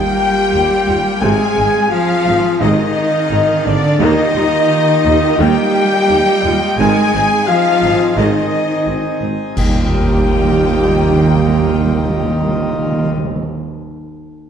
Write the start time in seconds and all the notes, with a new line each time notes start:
Already playing: D#3 G3 A#3 F4 G4 F5 G5
0.53 D#2 F3 D#4
0.87 D#2 G3 F4
1.21 G#1 C3 G#3 C4 G#4 G#5
1.56 G#1 G#3 D#4
1.90 F3 F4 F5
2.26 G#1 G#3 D#4
2.60 G#1 C3 D#3 G#3 D#4 D#5
3.31 G#1 D#3 C4
3.65 G#1 D3 G#3 C4 D4 D5
4.00 D#2 D#3 A#3 D#4 F4 G4 D#5
4.35 D#2 G3 F4
5.04 D#2 G3 F4
5.38 D#2 D#3 G3 A#3 G4 G5
6.09 D#2 F3 D#4
6.44 D#2 G3 F4
6.78 G#1 D#3 G#3 C4 D#4 G#4 G#5
7.14 G#1 C4 D#4
7.47 F3 F4 F5
7.82 G#1 C4 D#4
8.17 G#1 D#3 G#3 D#4 D#5
8.86 G#1 G#3 C4
9.21 G#1 C4 D#4
9.55 D#2 D#3 G3 A#3 D#4 F4 G4 D#5 G5, concert bass drum, crash
9.63 D#3
9.69 D#3
9.75 D#3
9.82 D#3
9.88 D#3
9.94 D#3
10.00 D#3
10.06 D#3
10.12 D#3
10.19 D#3
10.25 D#3
10.32 D#3
10.39 D#3
10.45 D#3
10.51 D#3
10.58 D#3
10.64 D#3
10.71 D#3
10.77 D#3
10.83 D#3
10.89 D#3
10.96 D#3
11.03 D#3
11.09 D#3
11.15 D#3
11.22 D#3
11.29 D#3
11.35 D#3
11.42 D#3
11.48 D#3
11.55 D#3
11.61 D#3
11.68 D#3
11.74 D#3
11.80 D#3
11.86 D#3
11.92 D#3
11.98 D#3
12.04 D#3
12.10 D#3
12.16 D#3
12.23 D#3
12.29 D#3
12.36 D#3
12.42 D#3
12.48 D#3
12.54 D#3
12.61 D#3
12.67 D#3
12.73 D#3
12.79 D#3
12.85 D#3
12.92 D#3
12.98 D#3
13.04 D#3
13.11 D#3
13.17 D#3
13.24 D#3
13.30 D#3
13.36 D#3
13.42 D#3